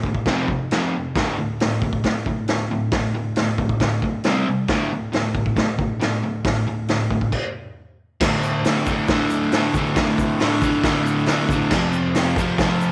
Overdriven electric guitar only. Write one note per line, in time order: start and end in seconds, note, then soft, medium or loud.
0.05 0.25 D2 medium
0.05 0.26 A2 medium
0.28 0.48 F2 medium
0.28 0.48 C3 loud
0.28 0.49 F3 loud
0.50 0.70 F2 medium
0.50 0.70 C3 medium
0.73 0.93 F2 medium
0.73 0.93 C3 loud
0.73 0.94 F3 medium
0.96 1.15 F2 medium
0.96 1.15 C3 medium
1.16 1.37 D2 medium
1.16 1.37 A2 medium
1.16 1.37 D3 medium
1.39 1.59 D2 medium
1.39 1.58 A2 medium
1.62 1.81 D2 medium
1.62 1.81 A2 medium
1.84 2.03 D2 medium
1.84 2.03 A2 medium
2.05 2.25 D2 medium
2.05 2.25 A2 medium
2.27 2.47 D2 medium
2.27 2.47 A2 medium
2.49 2.69 D2 medium
2.49 2.69 A2 medium
2.71 2.91 D2 medium
2.71 2.91 A2 medium
2.93 3.13 D2 medium
2.93 3.13 A2 medium
3.15 3.35 D2 medium
3.15 3.35 A2 medium
3.37 3.57 D2 medium
3.37 3.57 A2 medium
3.59 3.79 D2 medium
3.59 3.79 A2 medium
3.81 4.01 D2 medium
3.81 4.01 A2 medium
4.03 4.23 D2 medium
4.03 4.24 A2 medium
4.26 4.47 C3 medium
4.26 4.47 G3 medium
4.26 4.48 C4 loud
4.48 4.68 C3 medium
4.48 4.68 G3 medium
4.69 4.91 D2 medium
4.69 4.91 A2 medium
4.69 4.91 D3 loud
4.92 5.11 D2 medium
4.92 5.12 A2 medium
5.12 5.33 D2 medium
5.12 5.33 A2 medium
5.35 5.55 D2 medium
5.35 5.55 A2 medium
5.57 5.77 D2 medium
5.57 5.78 A2 medium
5.79 5.99 D2 medium
5.79 6.00 A2 medium
6.00 6.21 D2 medium
6.00 6.21 A2 medium
6.23 6.44 D2 medium
6.23 6.44 A2 medium
6.45 6.65 D2 medium
6.45 6.66 A2 medium
6.67 6.87 D2 medium
6.67 6.88 A2 medium
6.89 7.10 D2 medium
6.89 7.10 A2 medium
7.11 7.32 D2 medium
7.11 7.32 A2 medium
8.20 8.65 D2 medium
8.20 8.65 A2 medium
8.20 8.66 D3 loud
8.65 8.87 D2 medium
8.65 8.87 A2 medium
8.65 8.89 D3 medium
8.88 9.09 D2 medium
8.88 9.10 A2 loud
8.88 9.11 D3 loud
9.11 9.52 D2 loud
9.11 9.54 A2 loud
9.11 9.54 D3 loud
9.53 9.74 D2 medium
9.53 9.75 A2 medium
9.53 9.76 D3 medium
9.76 9.95 D2 medium
9.76 9.96 A2 medium
9.76 9.97 D3 loud
9.96 10.39 D2 medium
9.96 10.40 A2 medium
9.96 10.41 D3 medium
10.40 10.61 D2 medium
10.40 10.62 A2 medium
10.40 10.62 D3 medium
10.63 10.84 D2 loud
10.63 10.84 A2 medium
10.63 10.85 D3 loud
10.85 11.26 D2 loud
10.85 11.27 A2 loud
10.85 11.28 D3 loud
11.28 11.50 D2 medium
11.28 11.51 A2 medium
11.28 11.51 D3 loud
11.51 11.71 D2 loud
11.51 11.71 A2 medium
11.51 11.71 D3 loud
11.73 12.15 F2 medium
11.73 12.15 C3 medium
11.73 12.16 F3 loud
12.15 12.37 F2 medium
12.15 12.37 C3 medium
12.15 12.39 F3 medium
12.37 12.58 F2 medium
12.37 12.59 C3 loud
12.37 12.60 F3 loud
12.59 12.92 F2 loud
12.59 12.92 C3 loud
12.59 12.92 F3 loud